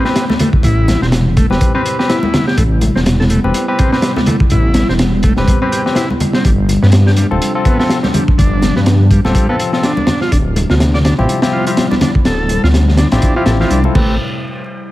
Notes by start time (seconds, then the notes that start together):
Already playing: C3 G3 A3 E4
0.05 C4 G4 B4, snare
0.16 snare, closed hi-hat
0.30 A3, snare, high conga
0.39 A3, closed hi-hat, low conga
0.53 kick
0.63 A1 E4, kick, closed hi-hat
0.88 snare, closed hi-hat, high conga
1.02 E1 C4, snare
1.12 snare, closed hi-hat
1.37 A3, kick, closed hi-hat
1.50 E1 C4 G4 B4, snare, high conga
1.61 kick, closed hi-hat
1.75 C4 G4 B4
1.86 closed hi-hat
1.99 C4 G4 B4, snare
2.09 E4, snare, closed hi-hat
2.23 high conga
2.34 snare, closed hi-hat, low conga
2.47 G4, snare
2.57 A1 A3 B3, kick, closed hi-hat
2.81 closed hi-hat, high conga
2.95 E1 C4, snare
3.06 snare, closed hi-hat
3.20 A4, snare
3.30 A3, closed hi-hat
3.44 E1 C4 G4 B4, high conga
3.54 closed hi-hat
3.68 C4 G4 B4
3.79 C4, kick, closed hi-hat
3.92 C4 G4 B4, snare
4.02 snare, closed hi-hat
4.16 A3, snare, high conga
4.26 A3, closed hi-hat, low conga
4.40 kick
4.50 A1 E4, kick, closed hi-hat
4.74 snare, closed hi-hat, high conga
4.89 E1 C4, snare
4.99 snare, closed hi-hat
5.23 A3, kick, closed hi-hat
5.36 E1 C4 G4 B4, snare, high conga
5.48 kick, closed hi-hat
5.62 C4 G4 B4
5.72 G4, closed hi-hat
5.86 C4 G4 B4, snare
5.95 E4, snare, closed hi-hat
6.10 high conga
6.20 closed hi-hat, low conga
6.33 C4, snare
6.44 G1 C3 F3 G3 D4, kick, closed hi-hat
6.69 closed hi-hat, high conga
6.82 G2 B3, snare
6.92 snare, closed hi-hat
7.07 G4, snare
7.16 G3, closed hi-hat
7.31 D1 C4 F4 A4, high conga
7.42 closed hi-hat
7.55 C4 F4 A4
7.65 B3, kick, closed hi-hat
7.79 B3 C4 F4 A4, snare
7.90 snare, closed hi-hat
8.03 G3, snare, high conga
8.14 G3, closed hi-hat, low conga
8.28 kick
8.38 G1 D4, kick, closed hi-hat
8.62 snare, closed hi-hat, high conga
8.76 G2 B3, snare
8.86 snare, closed hi-hat
9.11 G3, kick, closed hi-hat
9.25 D1 G3 C4 F4 A4, snare, high conga
9.35 kick, closed hi-hat
9.49 B3 C4 F4 A4
9.60 closed hi-hat
9.73 C4 F4 A4, snare
9.83 D4, snare, closed hi-hat
9.97 high conga
10.07 snare, closed hi-hat, low conga
10.21 F4, snare
10.32 D1 F3 G3 D4 E4, kick, closed hi-hat
10.56 closed hi-hat, high conga
10.70 D2 F4, snare
10.80 snare, closed hi-hat
10.94 D5, snare
11.05 D4, snare, closed hi-hat
11.18 A1 C4 E4 F4 G4, high conga
11.29 closed hi-hat
11.42 C4 E4 F4 G4, snare, closed hi-hat
11.53 F4
11.67 C4 E4 F4 G4, closed hi-hat
11.77 snare, closed hi-hat
11.91 D4, snare, high conga
12.01 D4, snare, closed hi-hat, low conga
12.15 kick
12.25 D1 A4, snare, closed hi-hat
12.49 closed hi-hat, high conga
12.63 D2 F4, snare
12.74 snare, closed hi-hat
12.88 snare
12.97 D4, snare, closed hi-hat
13.12 A1 C4 D4 E4 F4 G4, snare, closed hi-hat, high conga
13.22 kick, closed hi-hat
13.36 C4 E4 F4 G4
13.46 A1 A4, snare, closed hi-hat
13.60 C4 E4 F4 G4, snare
13.70 C2 D4, closed hi-hat
13.84 C4 E4 F4 A4, high conga
13.95 A1 A3 C4 G4 B4, kick, crash, low conga